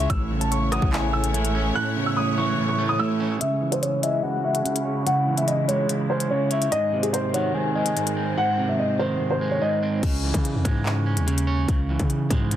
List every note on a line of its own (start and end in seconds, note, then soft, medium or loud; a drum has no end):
0.00 0.10 C#4 medium
0.00 0.10 C#5 medium
0.09 0.79 A1 loud
0.09 0.92 A2 medium
0.09 3.37 A3 medium
0.09 3.37 E4 medium
0.09 3.38 C#5 medium
0.09 0.39 E6 loud
0.09 kick loud
0.09 closed hi-hat medium
0.31 1.34 C#3 medium
0.41 0.49 A5 medium
0.41 closed hi-hat medium
0.51 0.67 C#6 medium
0.51 closed hi-hat medium
0.71 1.75 E3 medium
0.71 0.92 F#5 medium
0.71 0.88 D#6 medium
0.71 cross-stick loud
0.71 closed hi-hat medium
0.82 1.72 A1 loud
0.82 kick loud
0.92 1.33 A2 medium
0.92 1.71 G#5 medium
0.92 clap loud
1.13 2.17 A3 medium
1.13 1.72 E6 medium
1.24 closed hi-hat medium
1.34 1.74 A2 medium
1.34 closed hi-hat medium
1.45 closed hi-hat medium
1.55 2.58 C#4 medium
1.75 2.57 A2 loud
1.75 2.05 F#6 loud
1.96 2.99 C#3 medium
2.06 2.14 E6 medium
2.17 2.33 D#6 medium
2.37 3.41 E3 loud
2.37 2.67 C#6 medium
2.58 2.98 A2 medium
2.68 2.84 C#6 medium
2.78 3.41 A3 medium
2.89 2.97 D#6 medium
2.99 3.41 A2 medium
2.99 3.38 E6 medium
3.20 3.41 C#4 medium
3.41 6.69 C#3 medium
3.41 4.22 C#3 medium
3.41 6.69 G#3 medium
3.41 6.69 E4 medium
3.41 3.70 E5 loud
3.41 closed hi-hat medium
3.61 4.65 E3 medium
3.72 3.80 C5 medium
3.72 closed hi-hat medium
3.82 3.98 C#5 medium
3.82 closed hi-hat medium
4.02 5.06 G#3 medium
4.02 4.19 D#5 medium
4.02 4.22 E5 medium
4.02 closed hi-hat medium
4.23 4.64 C#3 medium
4.23 5.02 F#5 medium
4.44 5.48 C#4 medium
4.44 5.03 E5 medium
4.55 closed hi-hat medium
4.65 5.05 C#3 medium
4.65 closed hi-hat medium
4.76 closed hi-hat medium
4.85 5.89 C#5 medium
5.06 5.88 C#3 medium
5.06 5.36 F#5 loud
5.06 closed hi-hat medium
5.27 6.31 E3 medium
5.37 5.45 E5 medium
5.37 closed hi-hat medium
5.48 5.64 D#5 medium
5.48 closed hi-hat medium
5.68 6.72 G#3 loud
5.68 5.84 C#5 medium
5.68 closed hi-hat medium
5.89 6.30 C#3 medium
5.89 closed hi-hat medium
6.10 6.72 C#4 medium
6.10 6.26 C5 medium
6.20 closed hi-hat medium
6.30 6.72 C#3 medium
6.30 6.47 C#5 medium
6.51 6.72 C#5 medium
6.51 6.71 E5 medium
6.51 closed hi-hat medium
6.62 closed hi-hat medium
6.72 10.00 G#2 medium
6.72 7.54 G#2 medium
6.72 10.00 D#3 medium
6.72 10.00 C4 medium
6.72 7.01 D#5 loud
6.72 closed hi-hat medium
6.92 7.96 C3 medium
7.03 7.11 G#4 medium
7.03 closed hi-hat medium
7.13 7.29 C5 medium
7.13 closed hi-hat medium
7.34 8.38 D#3 loud
7.34 7.50 C#5 medium
7.34 7.54 F#5 medium
7.34 closed hi-hat medium
7.54 7.95 G#2 medium
7.54 8.33 G#5 medium
7.75 8.79 G#3 medium
7.75 8.34 D#5 medium
7.86 closed hi-hat medium
7.97 8.36 G#2 medium
7.97 closed hi-hat medium
8.07 closed hi-hat medium
8.17 9.20 C4 medium
8.37 9.18 G#2 medium
8.37 8.67 F#5 loud
8.58 9.62 C3 medium
8.69 8.77 E5 medium
8.79 8.95 D#5 medium
8.99 10.03 D#3 medium
8.99 9.29 C5 medium
9.20 9.60 G#2 medium
9.31 9.47 C5 medium
9.41 10.03 G#3 medium
9.51 9.59 C#5 medium
9.61 10.03 G#2 medium
9.61 10.00 D#5 medium
9.83 10.03 C4 medium
10.03 10.33 C#2 loud
10.03 10.84 C#3 medium
10.03 kick loud
10.03 closed hi-hat medium
10.03 crash medium
10.24 11.27 E3 medium
10.34 10.56 C#3 loud
10.34 kick medium
10.34 closed hi-hat medium
10.45 closed hi-hat medium
10.55 10.64 E2 loud
10.65 11.18 G#2 loud
10.65 11.68 G#3 medium
10.65 kick loud
10.65 closed hi-hat medium
10.86 11.26 C#3 medium
10.86 clap loud
11.06 12.10 C#4 medium
11.17 11.66 D#2 loud
11.17 closed hi-hat medium
11.27 11.67 C#3 medium
11.27 closed hi-hat medium
11.38 closed hi-hat medium
11.47 12.51 C#5 medium
11.68 11.98 C#2 loud
11.68 12.50 C#3 medium
11.68 kick loud
11.68 closed hi-hat medium
11.89 12.56 E3 medium
11.99 12.29 C#3 loud
11.99 kick medium
11.99 closed hi-hat medium
12.10 closed hi-hat medium
12.30 12.56 G#2 loud
12.30 12.56 G#3 loud
12.30 kick loud
12.30 closed hi-hat medium
12.51 12.56 C#3 medium
12.51 closed hi-hat medium